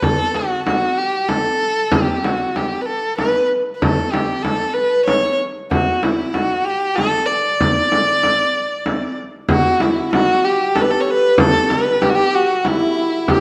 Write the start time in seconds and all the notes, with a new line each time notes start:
0.02 A4, frame drum
0.34 F#4, frame drum
0.65 F#4, frame drum
0.98 G4
1.29 A4, frame drum
1.92 G4, frame drum
2.24 F#4, frame drum
2.56 G4, frame drum
2.81 B4
2.86 A4
3.18 B4, frame drum
3.74 B4
3.82 A4, frame drum
4.12 G4, frame drum
4.43 A4, frame drum
4.74 B4
5.05 C#5, frame drum
5.71 F#4, frame drum
6.03 E4, frame drum
6.34 F#4, frame drum
6.65 G4
6.95 A4, frame drum
7.26 D5
7.60 frame drum
7.92 frame drum
8.23 frame drum
8.86 frame drum
9.49 F#4, frame drum
9.80 E4, frame drum
10.12 F#4, frame drum
10.43 G4
10.75 A4, frame drum
10.81 B4
10.89 A4
11.01 C#5
11.10 B4
11.33 B4
11.38 A4, frame drum
11.70 B4, frame drum
12.02 G4, frame drum
12.10 F#4
12.15 G4
12.34 F#4
12.64 E4, frame drum
12.71 E4
12.79 E4
12.87 E4
12.94 E4
13.02 E4
13.09 E4
13.28 G4, frame drum